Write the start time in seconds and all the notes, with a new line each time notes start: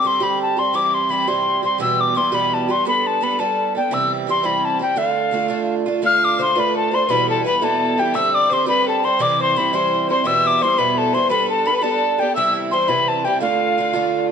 0.02 D3 G3 C4 G4
0.07 C6
0.20 D3 G3 C4 G4 B5
0.42 A5
0.57 G3 C4 G4 C6
0.73 C3 E3 G3 C4 G4 D6
0.94 C6
1.09 E3 G3 C4 G4 B5
1.27 C3 E3 G3 C4 G4 C6
1.62 G3 C4 G4 C6
1.78 E2 B2 E3 G3 B3 G4 E6
2.01 D6
2.15 E3 G3 B3 G4 C6
2.32 E2 B2 E3 G3 B3 G4 B5
2.54 A5
2.68 E3 G3 B3 G4 C6
2.85 G3 B3 D4 A4 B5
3.07 A5
3.21 G3 B3 D4 A4 B5
3.39 G3 B3 D4 A4 A5
3.75 B3 D4 A4 G5
3.91 C3 E3 G3 C4 G4 E6
4.27 E3 G3 C4 G4 C6
4.43 C3 E3 G3 C4 G4 B5
4.65 A5
4.79 G3 C4 G4 G5
4.96 D3 A3 D4 F4 F5
5.31 D3 A3 D4 F4
5.48 D3 A3 D4 F4
5.86 A3 D4 F4
6.02 D3 A3 D4 F4 F5
6.06 F6
6.24 D6
6.38 D3 A3 D4 F4 C5 C6
6.56 D3 A3 D4 F4 B4
6.60 B5
6.75 A4 A5
6.92 A3 D4 F4 C5 C6
7.06 E2 B2 E3 G3 B4 C6
7.10 B3 E4 B5
7.28 A4 A5
7.44 E3 G3 B3 E4 B4 B5
7.61 E2 B2 E3 G3 B3 E4 A4 A5
7.98 E3 G3 B3 E4 G4 G5
8.13 D3 G3 C4 G4 E5 E6
8.33 D5 D6
8.49 D3 G3 C4 G4 C5 C6
8.66 D3 G3 C4 G4 B4 B5
8.87 A4 A5
9.04 G3 C4 G4 C5 C6
9.19 C3 E3 G3 C4 E4 D5 D6
9.39 C5 C6
9.56 E3 G3 C4 E4 B5
9.73 C3 E3 G3 C4 E4 C5 C6
10.09 G3 C4 E4 C5 C6
10.24 E2 B2 E3 G3 B3 E4 E5 E6
10.47 D6
10.61 E3 G3 B3 E4 C5 C6
10.77 E2 B2 E3 G3 B3 E4 B4 B5
10.97 A4 A5
11.13 E3 G3 B3 E4 C5 C6
11.29 G3 B3 D4 A4 B4 B5
11.49 A4 A5
11.65 G3 B3 D4 A4 B4 B5
11.77 B5
11.82 G3 B3 D4 A4 A5
12.18 B3 D4 G4 A4 G5
12.35 C3 E3 G3 C4 E4 E5 E6
12.71 E3 G3 C4 E4 C5 C6
12.88 C3 E3 G3 C4 E4 B4 B5
13.08 A5
13.25 G3 C4 E4 G4 G5
13.40 D3 A3 D4 F4 F5
13.78 D3 A3 D4 F4
13.93 D3 A3 D4 F4